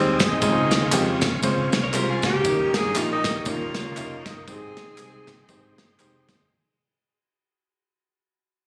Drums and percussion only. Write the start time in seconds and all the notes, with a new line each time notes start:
0.19 kick, snare, ride, tambourine
0.42 kick, ride, tambourine
0.71 snare, ride, tambourine
0.92 clap, ride, tambourine
1.21 kick, snare, ride, tambourine
1.43 kick, ride, tambourine
1.72 snare, ride, tambourine
1.93 clap, ride, tambourine
2.22 kick, snare, ride, tambourine
2.44 kick, ride, tambourine
2.74 snare, ride, tambourine
2.95 clap, ride, tambourine
3.24 kick, snare, ride, tambourine
3.45 kick, ride, tambourine
3.75 snare, ride, tambourine
3.97 clap, ride, tambourine
4.26 kick, snare, ride, tambourine
4.48 kick, ride, tambourine
4.77 snare, ride, tambourine
4.97 clap, ride, tambourine
5.27 kick, snare, ride, tambourine
5.48 kick, ride, tambourine
5.78 snare, ride, tambourine
5.99 clap, ride, tambourine
6.29 kick, snare, ride, tambourine